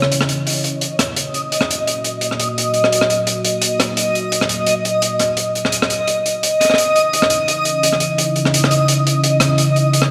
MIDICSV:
0, 0, Header, 1, 4, 480
1, 0, Start_track
1, 0, Tempo, 350877
1, 155, Time_signature, 4, 2, 24, 8
1, 13828, End_track
2, 0, Start_track
2, 0, Title_t, "Synth texture"
2, 0, Program_c, 0, 99
2, 167, Note_on_c, 0, 75, 78
2, 13828, Note_off_c, 0, 75, 0
2, 13828, End_track
3, 0, Start_track
3, 0, Title_t, "Ambient pad"
3, 0, Program_c, 1, 92
3, 158, Note_on_c, 1, 75, 83
3, 160, Note_on_c, 1, 58, 77
3, 160, Note_on_c, 1, 66, 68
3, 7782, Note_off_c, 1, 75, 0
3, 7783, Note_off_c, 1, 58, 0
3, 7783, Note_off_c, 1, 66, 0
3, 7842, Note_on_c, 1, 61, 76
3, 7845, Note_on_c, 1, 64, 69
3, 7845, Note_on_c, 1, 75, 83
3, 13828, Note_off_c, 1, 61, 0
3, 13828, Note_off_c, 1, 64, 0
3, 13828, Note_off_c, 1, 75, 0
3, 13828, End_track
4, 0, Start_track
4, 0, Title_t, "Drums"
4, 31, Note_on_c, 9, 37, 50
4, 159, Note_on_c, 9, 42, 84
4, 167, Note_off_c, 9, 37, 0
4, 282, Note_on_c, 9, 37, 56
4, 296, Note_off_c, 9, 42, 0
4, 395, Note_on_c, 9, 42, 75
4, 419, Note_off_c, 9, 37, 0
4, 531, Note_off_c, 9, 42, 0
4, 639, Note_on_c, 9, 42, 73
4, 682, Note_off_c, 9, 42, 0
4, 682, Note_on_c, 9, 42, 58
4, 718, Note_off_c, 9, 42, 0
4, 718, Note_on_c, 9, 42, 47
4, 768, Note_off_c, 9, 42, 0
4, 768, Note_on_c, 9, 42, 40
4, 798, Note_off_c, 9, 42, 0
4, 798, Note_on_c, 9, 42, 32
4, 838, Note_off_c, 9, 42, 0
4, 838, Note_on_c, 9, 42, 26
4, 877, Note_off_c, 9, 42, 0
4, 877, Note_on_c, 9, 42, 74
4, 1014, Note_off_c, 9, 42, 0
4, 1113, Note_on_c, 9, 42, 78
4, 1250, Note_off_c, 9, 42, 0
4, 1355, Note_on_c, 9, 37, 62
4, 1355, Note_on_c, 9, 42, 68
4, 1492, Note_off_c, 9, 37, 0
4, 1492, Note_off_c, 9, 42, 0
4, 1594, Note_on_c, 9, 42, 85
4, 1731, Note_off_c, 9, 42, 0
4, 1835, Note_on_c, 9, 42, 48
4, 1972, Note_off_c, 9, 42, 0
4, 2080, Note_on_c, 9, 42, 75
4, 2198, Note_on_c, 9, 37, 53
4, 2216, Note_off_c, 9, 42, 0
4, 2334, Note_off_c, 9, 37, 0
4, 2334, Note_on_c, 9, 42, 63
4, 2471, Note_off_c, 9, 42, 0
4, 2564, Note_on_c, 9, 42, 84
4, 2701, Note_off_c, 9, 42, 0
4, 2797, Note_on_c, 9, 42, 65
4, 2933, Note_off_c, 9, 42, 0
4, 3027, Note_on_c, 9, 42, 73
4, 3163, Note_on_c, 9, 37, 30
4, 3164, Note_off_c, 9, 42, 0
4, 3277, Note_on_c, 9, 42, 72
4, 3300, Note_off_c, 9, 37, 0
4, 3414, Note_off_c, 9, 42, 0
4, 3528, Note_on_c, 9, 42, 74
4, 3665, Note_off_c, 9, 42, 0
4, 3744, Note_on_c, 9, 42, 50
4, 3880, Note_off_c, 9, 42, 0
4, 3885, Note_on_c, 9, 37, 43
4, 4001, Note_on_c, 9, 42, 76
4, 4021, Note_off_c, 9, 37, 0
4, 4123, Note_on_c, 9, 37, 52
4, 4138, Note_off_c, 9, 42, 0
4, 4240, Note_on_c, 9, 42, 67
4, 4259, Note_off_c, 9, 37, 0
4, 4377, Note_off_c, 9, 42, 0
4, 4472, Note_on_c, 9, 42, 81
4, 4609, Note_off_c, 9, 42, 0
4, 4714, Note_on_c, 9, 42, 73
4, 4851, Note_off_c, 9, 42, 0
4, 4946, Note_on_c, 9, 42, 85
4, 5083, Note_off_c, 9, 42, 0
4, 5194, Note_on_c, 9, 37, 56
4, 5196, Note_on_c, 9, 42, 70
4, 5331, Note_off_c, 9, 37, 0
4, 5333, Note_off_c, 9, 42, 0
4, 5431, Note_on_c, 9, 42, 82
4, 5568, Note_off_c, 9, 42, 0
4, 5679, Note_on_c, 9, 42, 48
4, 5816, Note_off_c, 9, 42, 0
4, 5910, Note_on_c, 9, 42, 81
4, 6037, Note_on_c, 9, 37, 47
4, 6047, Note_off_c, 9, 42, 0
4, 6145, Note_on_c, 9, 42, 71
4, 6174, Note_off_c, 9, 37, 0
4, 6282, Note_off_c, 9, 42, 0
4, 6382, Note_on_c, 9, 42, 81
4, 6519, Note_off_c, 9, 42, 0
4, 6635, Note_on_c, 9, 42, 73
4, 6772, Note_off_c, 9, 42, 0
4, 6867, Note_on_c, 9, 42, 83
4, 7004, Note_off_c, 9, 42, 0
4, 7106, Note_on_c, 9, 42, 70
4, 7112, Note_on_c, 9, 37, 33
4, 7243, Note_off_c, 9, 42, 0
4, 7248, Note_off_c, 9, 37, 0
4, 7344, Note_on_c, 9, 42, 74
4, 7481, Note_off_c, 9, 42, 0
4, 7598, Note_on_c, 9, 42, 46
4, 7728, Note_on_c, 9, 37, 44
4, 7734, Note_off_c, 9, 42, 0
4, 7828, Note_on_c, 9, 42, 70
4, 7865, Note_off_c, 9, 37, 0
4, 7965, Note_off_c, 9, 42, 0
4, 7966, Note_on_c, 9, 37, 51
4, 8072, Note_on_c, 9, 42, 68
4, 8103, Note_off_c, 9, 37, 0
4, 8209, Note_off_c, 9, 42, 0
4, 8311, Note_on_c, 9, 42, 70
4, 8448, Note_off_c, 9, 42, 0
4, 8560, Note_on_c, 9, 42, 65
4, 8697, Note_off_c, 9, 42, 0
4, 8798, Note_on_c, 9, 42, 81
4, 8935, Note_off_c, 9, 42, 0
4, 9038, Note_on_c, 9, 37, 23
4, 9042, Note_on_c, 9, 42, 72
4, 9094, Note_off_c, 9, 37, 0
4, 9094, Note_on_c, 9, 37, 29
4, 9160, Note_off_c, 9, 37, 0
4, 9160, Note_on_c, 9, 37, 36
4, 9178, Note_off_c, 9, 42, 0
4, 9216, Note_off_c, 9, 37, 0
4, 9216, Note_on_c, 9, 37, 41
4, 9275, Note_on_c, 9, 42, 75
4, 9353, Note_off_c, 9, 37, 0
4, 9412, Note_off_c, 9, 42, 0
4, 9517, Note_on_c, 9, 42, 49
4, 9654, Note_off_c, 9, 42, 0
4, 9758, Note_on_c, 9, 42, 83
4, 9880, Note_on_c, 9, 37, 51
4, 9895, Note_off_c, 9, 42, 0
4, 9986, Note_on_c, 9, 42, 66
4, 10017, Note_off_c, 9, 37, 0
4, 10123, Note_off_c, 9, 42, 0
4, 10234, Note_on_c, 9, 42, 73
4, 10371, Note_off_c, 9, 42, 0
4, 10467, Note_on_c, 9, 42, 66
4, 10604, Note_off_c, 9, 42, 0
4, 10716, Note_on_c, 9, 42, 81
4, 10843, Note_on_c, 9, 37, 32
4, 10852, Note_off_c, 9, 42, 0
4, 10947, Note_on_c, 9, 42, 67
4, 10979, Note_off_c, 9, 37, 0
4, 11084, Note_off_c, 9, 42, 0
4, 11195, Note_on_c, 9, 42, 75
4, 11332, Note_off_c, 9, 42, 0
4, 11434, Note_on_c, 9, 42, 51
4, 11565, Note_on_c, 9, 37, 46
4, 11570, Note_off_c, 9, 42, 0
4, 11681, Note_on_c, 9, 42, 84
4, 11702, Note_off_c, 9, 37, 0
4, 11818, Note_off_c, 9, 42, 0
4, 11818, Note_on_c, 9, 37, 54
4, 11914, Note_on_c, 9, 42, 62
4, 11955, Note_off_c, 9, 37, 0
4, 12051, Note_off_c, 9, 42, 0
4, 12152, Note_on_c, 9, 42, 77
4, 12289, Note_off_c, 9, 42, 0
4, 12404, Note_on_c, 9, 42, 73
4, 12541, Note_off_c, 9, 42, 0
4, 12635, Note_on_c, 9, 42, 76
4, 12772, Note_off_c, 9, 42, 0
4, 12860, Note_on_c, 9, 37, 61
4, 12865, Note_on_c, 9, 42, 65
4, 12997, Note_off_c, 9, 37, 0
4, 13001, Note_off_c, 9, 42, 0
4, 13105, Note_on_c, 9, 42, 76
4, 13242, Note_off_c, 9, 42, 0
4, 13353, Note_on_c, 9, 42, 48
4, 13489, Note_off_c, 9, 42, 0
4, 13590, Note_on_c, 9, 42, 78
4, 13703, Note_on_c, 9, 37, 52
4, 13727, Note_off_c, 9, 42, 0
4, 13828, Note_off_c, 9, 37, 0
4, 13828, End_track
0, 0, End_of_file